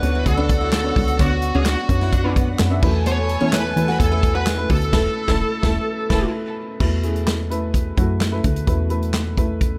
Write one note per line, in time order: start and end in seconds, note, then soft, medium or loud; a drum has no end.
0.00 0.25 D2 medium
0.00 0.95 D3 medium
0.00 0.02 B3 medium
0.00 0.34 B3 medium
0.00 0.02 D4 medium
0.00 0.34 D4 medium
0.00 2.80 F#4 medium
0.00 2.85 A4 medium
0.00 0.24 B4 medium
0.00 0.02 C#5 medium
0.00 0.34 C#5 medium
0.00 2.79 F#5 medium
0.00 closed hi-hat medium
0.15 0.26 E4 medium
0.26 0.93 D2 medium
0.26 0.73 A4 medium
0.26 kick medium
0.26 closed hi-hat medium
0.37 0.80 B3 medium
0.37 0.80 D4 medium
0.37 0.49 D4 medium
0.37 0.80 B4 medium
0.49 kick loud
0.49 closed hi-hat medium
0.61 0.72 E4 medium
0.72 1.22 A4 medium
0.72 snare loud
0.72 clap medium
0.72 closed hi-hat medium
0.84 1.16 B3 medium
0.84 1.16 D4 medium
0.84 1.16 C#5 medium
0.95 1.18 C#2 loud
0.95 1.62 D3 medium
0.95 kick medium
0.95 open hi-hat medium
1.08 closed hi-hat soft
1.19 1.52 D2 loud
1.19 1.51 B3 medium
1.19 1.31 B3 loud
1.19 1.51 D4 medium
1.19 1.56 F#4 medium
1.19 1.51 C#5 medium
1.19 kick loud
1.19 closed hi-hat medium
1.42 closed hi-hat medium
1.54 1.77 D2 medium
1.54 1.86 B3 medium
1.54 1.65 C#4 medium
1.54 1.86 D4 medium
1.54 1.86 F#4 medium
1.54 1.67 G#4 medium
1.65 1.77 D4 medium
1.65 2.32 F#4 medium
1.65 snare loud
1.65 clap medium
1.65 closed hi-hat medium
1.89 2.56 F#2 loud
1.89 2.21 B3 medium
1.89 2.21 D4 medium
1.89 2.21 C#5 medium
1.89 kick medium
1.89 closed hi-hat medium
2.01 2.12 E4 medium
2.01 snare soft
2.13 2.35 D4 medium
2.13 kick medium
2.13 closed hi-hat medium
2.24 2.67 B3 medium
2.24 2.67 D4 medium
2.24 2.67 B4 medium
2.36 2.48 B3 medium
2.36 kick medium
2.36 closed hi-hat medium
2.59 2.82 F#2 medium
2.59 snare loud
2.59 clap medium
2.59 closed hi-hat medium
2.70 2.83 B3 medium
2.70 2.83 D4 medium
2.70 2.83 E5 loud
2.83 3.37 E2 loud
2.83 3.49 B2 medium
2.83 3.36 A3 medium
2.83 3.36 E4 medium
2.83 4.90 A4 medium
2.83 3.36 B4 loud
2.83 4.90 G#5 medium
2.83 kick loud
2.83 crash medium
3.06 3.17 B3 medium
3.06 3.55 C#5 loud
3.06 closed hi-hat medium
3.29 closed hi-hat medium
3.41 3.74 E2 loud
3.41 3.73 A3 medium
3.41 3.52 C#4 medium
3.41 3.73 E4 medium
3.41 3.73 C#5 medium
3.52 3.64 E4 medium
3.52 3.99 B4 loud
3.52 snare loud
3.52 clap medium
3.52 closed hi-hat medium
3.76 3.98 E2 medium
3.76 4.09 A3 medium
3.76 4.08 E4 medium
3.76 4.09 B4 medium
3.76 closed hi-hat medium
3.88 3.99 F#4 medium
3.88 snare soft
4.00 4.67 E2 loud
4.00 4.35 A4 medium
4.00 kick medium
4.00 closed hi-hat medium
4.11 4.54 A3 medium
4.11 4.54 E4 medium
4.11 4.23 E4 medium
4.11 4.54 B4 medium
4.23 kick medium
4.23 closed hi-hat medium
4.35 4.46 F#4 medium
4.35 4.71 B4 medium
4.47 snare loud
4.47 clap medium
4.47 closed hi-hat medium
4.58 4.90 A3 medium
4.58 4.90 E4 medium
4.58 4.90 B4 medium
4.68 4.92 D2 medium
4.68 4.91 B2 medium
4.68 6.30 A4 medium
4.68 kick medium
4.68 open hi-hat medium
4.82 closed hi-hat soft
4.92 5.09 E1 loud
4.92 5.09 A3 loud
4.92 5.09 E4 medium
4.92 5.09 A4 loud
4.92 5.09 B4 medium
4.92 5.10 A5 loud
4.92 kick loud
4.92 snare loud
4.92 crash medium
5.28 5.44 E1 loud
5.28 5.44 A3 medium
5.28 5.44 E4 loud
5.28 5.44 A4 loud
5.28 5.44 A5 medium
5.28 kick loud
5.28 snare loud
5.62 5.79 E1 loud
5.62 5.79 A3 loud
5.62 5.79 E4 loud
5.62 5.79 A4 medium
5.62 5.79 A5 medium
5.62 kick loud
5.62 snare loud
6.09 6.26 E1 loud
6.09 6.26 A3 loud
6.09 6.26 E4 loud
6.09 6.27 A4 medium
6.09 6.26 B4 loud
6.09 6.27 A5 medium
6.09 kick loud
6.09 snare loud
6.09 crash medium
6.80 7.93 E2 loud
6.80 7.46 B2 medium
6.80 7.02 A3 medium
6.80 7.01 E4 medium
6.80 7.01 B4 medium
6.80 kick medium
6.80 crash medium
7.03 7.46 A3 medium
7.03 7.46 E4 medium
7.03 7.46 G#4 medium
7.03 closed hi-hat medium
7.16 closed hi-hat soft
7.27 snare loud
7.27 clap medium
7.27 closed hi-hat medium
7.50 7.93 A3 medium
7.50 7.93 E4 medium
7.50 7.93 B4 medium
7.50 closed hi-hat medium
7.74 kick medium
7.74 closed hi-hat medium
7.97 8.41 F#2 medium
7.97 8.29 A3 medium
7.97 8.29 E4 medium
7.97 8.29 F#4 medium
7.97 kick medium
7.97 closed hi-hat medium
8.21 snare loud
8.21 clap medium
8.21 closed hi-hat medium
8.31 8.64 A3 medium
8.31 8.64 E4 medium
8.31 8.64 B4 medium
8.44 8.66 D2 medium
8.44 kick medium
8.44 closed hi-hat medium
8.56 closed hi-hat soft
8.67 9.78 E2 loud
8.67 9.34 B2 medium
8.67 8.88 A3 medium
8.67 8.88 E4 medium
8.67 8.88 B4 medium
8.67 kick medium
8.67 closed hi-hat medium
8.89 9.33 A3 medium
8.89 9.33 E4 medium
8.89 9.33 B4 medium
8.89 closed hi-hat medium
9.03 closed hi-hat soft
9.13 snare loud
9.13 clap medium
9.13 closed hi-hat medium
9.37 9.78 A3 medium
9.37 9.78 E4 medium
9.37 9.78 B4 medium
9.37 kick medium
9.37 closed hi-hat medium
9.61 kick medium
9.61 closed hi-hat medium